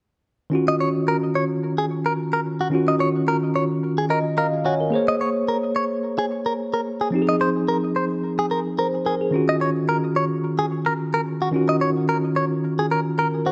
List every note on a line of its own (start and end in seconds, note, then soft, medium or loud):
0.50 2.67 D#3 medium
0.50 2.68 C#4 medium
0.50 2.69 F4 medium
0.55 2.70 F#4 medium
0.68 0.75 D#5 medium
0.80 0.88 C#5 medium
1.08 1.16 A#4 medium
1.35 1.43 C#5 medium
1.78 1.85 G#4 medium
2.06 2.12 A#4 medium
2.33 2.40 A#4 medium
2.61 2.67 F#4 medium
2.70 4.87 D#3 medium
2.70 4.88 C#4 medium
2.70 4.89 F4 medium
2.75 4.90 F#4 medium
2.88 2.95 D#5 medium
3.01 3.09 C#5 medium
3.28 3.36 A#4 medium
3.56 3.64 C#5 medium
3.98 4.05 G#4 medium
4.10 4.19 A#4 medium
4.10 4.36 D#5 medium
4.38 4.46 A#4 medium
4.38 4.64 D#5 medium
4.38 4.63 F5 medium
4.65 4.74 F#4 medium
4.65 4.80 C#5 medium
4.65 4.91 G#5 medium
4.80 5.07 A#4 medium
4.90 7.08 A#3 medium
4.90 7.09 G#4 medium
4.90 7.09 C5 medium
4.95 7.10 C#5 medium
5.08 5.15 D#5 medium
5.21 5.29 C#5 medium
5.48 5.56 A#4 medium
5.76 5.84 C#5 medium
6.19 6.25 G#4 medium
6.46 6.53 A#4 medium
6.74 6.80 A#4 medium
7.01 7.08 G#4 medium
7.11 9.28 F3 medium
7.11 9.29 C4 medium
7.11 9.30 D#4 medium
7.16 7.21 G4 medium
7.22 8.79 G#4 medium
7.29 7.35 D#5 medium
7.41 7.49 C5 medium
7.69 7.77 A#4 medium
7.96 8.04 C5 medium
8.39 8.45 G#4 medium
8.51 8.59 A#4 medium
8.78 8.87 A#4 medium
8.78 9.04 C5 medium
9.06 9.14 G#4 medium
9.06 9.20 A#4 medium
9.21 9.47 G#4 medium
9.31 11.48 D#3 medium
9.31 11.49 C#4 medium
9.31 11.50 F4 medium
9.36 11.51 F#4 medium
9.49 9.55 D#5 medium
9.61 9.69 C#5 medium
9.89 9.97 A#4 medium
10.16 10.24 C#5 medium
10.59 10.65 G#4 medium
10.86 10.93 A#4 medium
11.14 11.21 A#4 medium
11.42 11.48 F#4 medium
11.51 13.52 D#3 medium
11.51 13.52 C#4 medium
11.51 13.52 F4 medium
11.56 13.52 F#4 medium
11.69 11.75 D#5 medium
11.81 11.89 C#5 medium
12.09 12.17 A#4 medium
12.36 12.44 C#5 medium
12.79 12.85 G#4 medium
12.91 12.99 A#4 medium
13.18 13.44 A#4 medium
13.18 13.27 A#4 medium
13.46 13.52 F#4 medium
13.46 13.52 C5 medium